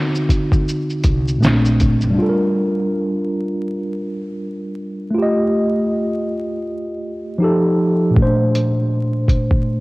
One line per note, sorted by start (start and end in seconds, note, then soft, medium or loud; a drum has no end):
0.00 1.34 D3 medium
0.00 1.36 C4 medium
0.00 1.38 D#4 medium
0.00 1.40 F#4 medium
0.15 shaker soft
0.29 kick medium
0.29 closed hi-hat medium
0.29 shaker soft
0.52 0.64 D2 medium
0.52 kick loud
0.52 shaker soft
0.68 shaker medium
0.90 shaker soft
1.04 1.35 C2 medium
1.04 kick medium
1.04 closed hi-hat medium
1.04 shaker soft
1.28 shaker soft
1.39 1.92 A#1 medium
1.39 2.15 A#2 medium
1.39 2.16 A3 medium
1.43 2.17 C4 medium
1.43 2.13 D4 medium
1.43 snare loud
1.43 shaker medium
1.65 shaker soft
1.80 kick medium
1.80 closed hi-hat medium
1.80 shaker soft
2.01 2.15 F1 medium
2.01 shaker soft
2.11 5.09 G3 medium
2.11 5.11 D4 medium
2.18 5.13 F4 medium
2.18 2.27 A4 medium
2.29 5.19 A#4 medium
5.11 7.34 A3 medium
5.11 7.36 F4 medium
5.18 7.38 G4 medium
5.22 7.40 D#5 medium
7.38 8.15 F3 medium
7.38 8.16 D#4 medium
7.38 8.17 G4 medium
7.44 8.18 A4 medium
8.10 9.80 A#2 medium
8.10 9.80 A3 medium
8.17 8.25 C#4 soft
8.17 kick loud
8.22 9.80 D4 medium
8.22 9.80 C5 medium
8.55 closed hi-hat medium
9.28 kick medium
9.28 closed hi-hat medium
9.51 kick medium